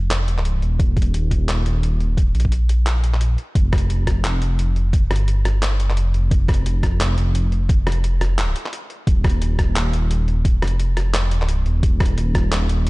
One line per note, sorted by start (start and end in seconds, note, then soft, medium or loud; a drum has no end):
0.00 0.61 F1 medium
0.11 clap loud
0.11 closed hi-hat medium
0.28 closed hi-hat medium
0.38 clap soft
0.45 closed hi-hat medium
0.62 0.79 D#1 medium
0.62 closed hi-hat soft
0.79 1.13 D#1 medium
0.79 kick loud
0.79 closed hi-hat medium
0.97 kick loud
0.97 closed hi-hat soft
1.02 closed hi-hat medium
1.14 1.65 D#1 medium
1.14 closed hi-hat medium
1.31 kick medium
1.31 closed hi-hat medium
1.49 clap loud
1.49 closed hi-hat medium
1.66 2.34 D#1 medium
1.66 closed hi-hat medium
1.83 closed hi-hat medium
2.00 closed hi-hat soft
2.17 kick loud
2.17 closed hi-hat medium
2.35 3.37 A#1 medium
2.35 closed hi-hat soft
2.40 closed hi-hat medium
2.45 kick medium
2.52 closed hi-hat medium
2.69 closed hi-hat medium
2.86 clap loud
2.86 closed hi-hat medium
3.04 closed hi-hat medium
3.14 clap soft
3.21 closed hi-hat medium
3.38 closed hi-hat soft
3.55 3.89 F1 medium
3.55 kick loud
3.55 closed hi-hat medium
3.73 kick loud
3.73 cross-stick medium
3.73 closed hi-hat soft
3.78 closed hi-hat medium
3.90 4.40 F1 medium
3.90 closed hi-hat medium
4.07 kick medium
4.07 cross-stick soft
4.07 closed hi-hat medium
4.24 clap loud
4.24 closed hi-hat medium
4.42 5.10 F1 medium
4.42 closed hi-hat medium
4.59 closed hi-hat medium
4.76 closed hi-hat soft
4.93 kick loud
4.93 closed hi-hat medium
5.11 5.83 G1 medium
5.11 cross-stick medium
5.11 closed hi-hat soft
5.16 closed hi-hat medium
5.28 closed hi-hat medium
5.45 cross-stick soft
5.45 closed hi-hat medium
5.62 clap loud
5.62 closed hi-hat medium
5.80 6.13 F#1 medium
5.80 closed hi-hat medium
5.90 clap soft
5.97 closed hi-hat medium
6.14 6.30 F1 loud
6.14 closed hi-hat soft
6.31 6.65 F1 loud
6.31 kick loud
6.31 closed hi-hat medium
6.48 kick loud
6.48 cross-stick medium
6.48 closed hi-hat soft
6.54 closed hi-hat medium
6.66 7.16 F1 medium
6.66 closed hi-hat medium
6.83 kick medium
6.83 cross-stick soft
6.83 closed hi-hat medium
7.01 clap loud
7.01 closed hi-hat medium
7.18 7.85 F1 medium
7.18 closed hi-hat medium
7.35 closed hi-hat medium
7.52 closed hi-hat soft
7.69 kick loud
7.69 closed hi-hat medium
7.86 8.20 F1 medium
7.86 cross-stick medium
7.86 closed hi-hat soft
7.92 closed hi-hat medium
8.04 closed hi-hat medium
8.21 8.54 F1 medium
8.21 cross-stick soft
8.21 closed hi-hat medium
8.38 clap loud
8.38 closed hi-hat medium
8.56 closed hi-hat medium
8.66 clap soft
8.73 closed hi-hat medium
8.90 closed hi-hat soft
9.07 9.41 D#1 medium
9.07 kick loud
9.07 closed hi-hat medium
9.24 kick loud
9.24 cross-stick medium
9.24 closed hi-hat soft
9.30 closed hi-hat medium
9.42 9.92 D#1 loud
9.42 closed hi-hat medium
9.59 kick medium
9.59 cross-stick soft
9.59 closed hi-hat medium
9.76 clap loud
9.76 closed hi-hat medium
9.93 10.61 D#1 medium
9.93 closed hi-hat medium
10.11 closed hi-hat medium
10.28 closed hi-hat soft
10.45 kick loud
10.45 closed hi-hat medium
10.62 11.65 F1 medium
10.62 cross-stick medium
10.62 closed hi-hat soft
10.68 closed hi-hat medium
10.80 closed hi-hat medium
10.97 cross-stick soft
10.97 closed hi-hat medium
11.14 clap loud
11.14 closed hi-hat medium
11.31 closed hi-hat medium
11.42 clap soft
11.49 closed hi-hat medium
11.66 11.82 D#1 medium
11.66 closed hi-hat soft
11.83 12.16 D#1 loud
11.83 kick loud
11.83 closed hi-hat medium
12.00 kick medium
12.00 cross-stick medium
12.00 closed hi-hat soft
12.06 closed hi-hat medium
12.18 12.68 D#1 loud
12.18 closed hi-hat medium
12.35 kick medium
12.35 cross-stick medium
12.35 closed hi-hat medium
12.52 clap loud
12.52 closed hi-hat medium
12.69 12.90 D#1 medium
12.69 closed hi-hat medium
12.87 closed hi-hat medium